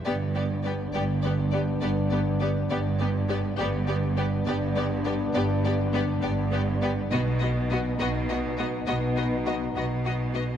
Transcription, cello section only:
0, 0, Header, 1, 2, 480
1, 0, Start_track
1, 0, Tempo, 587659
1, 42, Time_signature, 12, 3, 24, 8
1, 8634, End_track
2, 0, Start_track
2, 0, Title_t, "Cello section"
2, 0, Program_c, 0, 48
2, 38, Note_on_c, 0, 43, 69
2, 677, Note_off_c, 0, 43, 0
2, 761, Note_on_c, 0, 43, 73
2, 1399, Note_off_c, 0, 43, 0
2, 1485, Note_on_c, 0, 43, 69
2, 2122, Note_off_c, 0, 43, 0
2, 2209, Note_on_c, 0, 43, 77
2, 2844, Note_off_c, 0, 43, 0
2, 2927, Note_on_c, 0, 43, 84
2, 3563, Note_off_c, 0, 43, 0
2, 3647, Note_on_c, 0, 43, 85
2, 4283, Note_off_c, 0, 43, 0
2, 4366, Note_on_c, 0, 43, 88
2, 5002, Note_off_c, 0, 43, 0
2, 5086, Note_on_c, 0, 43, 92
2, 5722, Note_off_c, 0, 43, 0
2, 5807, Note_on_c, 0, 47, 82
2, 6443, Note_off_c, 0, 47, 0
2, 6524, Note_on_c, 0, 47, 80
2, 7161, Note_off_c, 0, 47, 0
2, 7246, Note_on_c, 0, 47, 72
2, 7881, Note_off_c, 0, 47, 0
2, 7965, Note_on_c, 0, 47, 67
2, 8600, Note_off_c, 0, 47, 0
2, 8634, End_track
0, 0, End_of_file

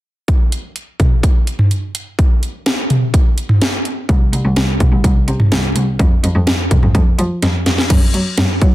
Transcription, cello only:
0, 0, Header, 1, 2, 480
1, 0, Start_track
1, 0, Tempo, 476190
1, 284, Time_signature, 4, 2, 24, 8
1, 8819, End_track
2, 0, Start_track
2, 0, Title_t, "Cello"
2, 0, Program_c, 0, 42
2, 4123, Note_on_c, 0, 36, 97
2, 4222, Note_off_c, 0, 36, 0
2, 4363, Note_on_c, 0, 36, 88
2, 4462, Note_off_c, 0, 36, 0
2, 4483, Note_on_c, 0, 36, 92
2, 4582, Note_off_c, 0, 36, 0
2, 4603, Note_on_c, 0, 36, 100
2, 4702, Note_off_c, 0, 36, 0
2, 4842, Note_on_c, 0, 36, 96
2, 4941, Note_off_c, 0, 36, 0
2, 4960, Note_on_c, 0, 36, 85
2, 5060, Note_off_c, 0, 36, 0
2, 5081, Note_on_c, 0, 36, 102
2, 5181, Note_off_c, 0, 36, 0
2, 5321, Note_on_c, 0, 48, 89
2, 5420, Note_off_c, 0, 48, 0
2, 5562, Note_on_c, 0, 36, 94
2, 5661, Note_off_c, 0, 36, 0
2, 5802, Note_on_c, 0, 36, 96
2, 5901, Note_off_c, 0, 36, 0
2, 6043, Note_on_c, 0, 41, 100
2, 6142, Note_off_c, 0, 41, 0
2, 6283, Note_on_c, 0, 41, 97
2, 6382, Note_off_c, 0, 41, 0
2, 6402, Note_on_c, 0, 41, 93
2, 6501, Note_off_c, 0, 41, 0
2, 6522, Note_on_c, 0, 41, 94
2, 6621, Note_off_c, 0, 41, 0
2, 6764, Note_on_c, 0, 41, 91
2, 6862, Note_off_c, 0, 41, 0
2, 6884, Note_on_c, 0, 41, 84
2, 6982, Note_off_c, 0, 41, 0
2, 7003, Note_on_c, 0, 41, 99
2, 7102, Note_off_c, 0, 41, 0
2, 7244, Note_on_c, 0, 53, 96
2, 7342, Note_off_c, 0, 53, 0
2, 7485, Note_on_c, 0, 41, 103
2, 7583, Note_off_c, 0, 41, 0
2, 7725, Note_on_c, 0, 41, 83
2, 7823, Note_off_c, 0, 41, 0
2, 7964, Note_on_c, 0, 42, 100
2, 8062, Note_off_c, 0, 42, 0
2, 8204, Note_on_c, 0, 54, 89
2, 8303, Note_off_c, 0, 54, 0
2, 8444, Note_on_c, 0, 42, 100
2, 8542, Note_off_c, 0, 42, 0
2, 8685, Note_on_c, 0, 54, 92
2, 8783, Note_off_c, 0, 54, 0
2, 8819, End_track
0, 0, End_of_file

